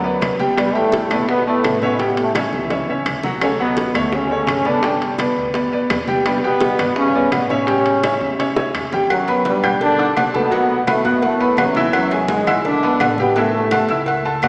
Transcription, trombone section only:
0.00 0.36 F#2 medium
0.00 0.35 F#3 loud
0.57 0.74 G2 medium
0.57 0.74 G3 medium
0.74 1.29 A2 medium
0.74 1.28 A3 loud
1.28 1.45 B2 medium
1.28 1.45 B3 loud
1.46 1.80 A2 medium
1.46 1.79 A3 medium
1.81 2.15 B2 medium
1.81 2.15 B3 medium
2.19 2.35 A2 medium
2.19 2.35 A3 medium
2.34 2.43 G2 medium
2.34 2.43 G3 medium
2.52 2.93 E3 medium
2.52 2.94 E4 medium
3.41 3.49 C#3 medium
3.41 3.49 C#4 medium
3.60 3.93 B2 medium
3.60 3.93 B3 medium
3.96 4.12 A2 medium
3.96 4.12 A3 medium
4.13 4.66 C#3 medium
4.13 4.66 C#4 loud
4.67 5.02 D3 medium
4.67 5.02 D4 medium
6.26 6.43 G2 medium
6.26 6.42 G3 medium
6.43 6.93 B2 medium
6.43 6.93 B3 loud
6.96 7.30 C#3 medium
6.96 7.30 C#4 loud
7.32 7.49 B2 medium
7.32 7.49 B3 loud
7.49 8.70 C#3 medium
7.49 8.70 C#4 medium
9.11 9.43 F#2 medium
9.11 9.43 F#3 medium
9.46 9.79 G2 medium
9.46 9.79 G3 medium
9.83 10.15 D3 medium
9.83 10.15 D4 loud
10.34 10.84 B2 medium
10.34 10.84 B3 loud
10.88 11.05 A2 medium
10.88 11.05 A3 medium
11.06 11.23 B2 medium
11.06 11.24 B3 medium
11.24 11.59 A2 medium
11.24 11.59 A3 loud
11.61 11.84 F#2 medium
11.61 11.85 F#3 medium
11.95 12.27 F#2 medium
11.95 12.28 F#3 medium
12.30 12.63 G#2 medium
12.30 12.63 G#3 medium
12.66 13.15 D3 medium
12.66 13.15 D4 loud
13.19 13.35 B2 medium
13.19 13.35 B3 medium
13.37 13.53 A2 medium
13.37 13.53 A3 medium
13.54 13.87 A2 medium
13.54 13.87 A3 medium

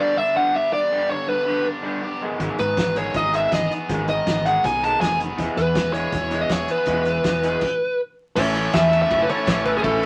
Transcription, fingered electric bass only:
2.40 2.48 G#1 loud
2.60 2.75 G#2 medium
2.77 3.08 G#1 medium
3.14 3.45 G#1 medium
3.52 3.67 G#1 medium
3.89 4.20 G#1 medium
4.27 4.57 G#1 medium
4.65 4.95 B1 medium
5.02 5.32 F1 loud
5.39 5.46 E1 medium
5.57 5.72 E2 medium
5.76 6.06 E1 medium
6.13 6.43 E1 medium
6.50 6.65 E1 medium
6.87 7.18 E1 medium
7.25 7.55 E1 medium
8.37 8.67 A1 medium
8.74 9.04 E2 medium
9.11 9.26 F#1 medium
9.47 9.78 A1 loud
9.84 10.06 A1 loud

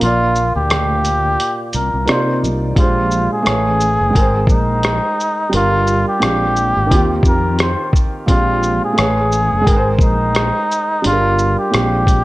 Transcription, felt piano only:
0.00 2.02 A#2 medium
0.00 2.03 A#3 medium
0.00 2.05 F4 medium
0.06 2.06 D5 medium
2.05 2.75 C3 medium
2.05 2.76 A#3 medium
2.05 2.76 D#4 medium
2.05 2.77 F4 medium
2.09 2.77 D5 medium
2.75 3.45 A#2 medium
2.75 3.45 G#3 medium
2.75 3.46 D4 medium
2.75 3.46 G4 medium
2.75 3.47 C5 medium
3.43 4.13 A3 medium
3.43 4.14 G#4 medium
3.43 4.14 B4 medium
3.47 4.15 C#5 medium
4.10 5.47 G#3 medium
4.10 5.49 G5 medium
4.16 5.50 A#4 medium
4.16 5.52 C5 medium
5.50 6.20 G3 medium
5.50 6.21 D4 medium
5.50 6.21 F4 medium
5.54 6.22 A#4 medium
6.19 6.89 A#2 medium
6.19 6.90 G#3 medium
6.19 6.88 C4 medium
6.19 6.91 D4 medium
6.23 6.91 G4 medium
6.86 8.23 D#3 medium
6.86 8.25 C4 medium
6.92 8.26 F4 medium
6.92 8.28 G4 loud
8.26 8.96 A#2 medium
8.26 8.96 G#3 medium
8.26 8.97 C4 medium
8.26 8.98 D4 medium
8.30 8.98 G4 medium
8.93 9.64 A3 medium
8.93 9.65 G#4 soft
8.93 9.65 B4 medium
8.97 9.66 C#5 medium
9.61 10.99 G#3 medium
9.61 11.00 G5 medium
9.67 11.02 A#4 medium
9.67 9.75 B4 medium
9.76 11.06 C5 medium
11.02 11.72 G3 medium
11.02 11.72 D4 medium
11.02 11.73 F4 medium
11.06 11.12 G#4 medium
11.13 11.77 A#4 medium
11.70 12.24 A#2 medium
11.70 12.24 G#3 medium
11.70 12.24 C4 medium
11.70 12.24 D4 medium
11.74 12.24 G4 medium

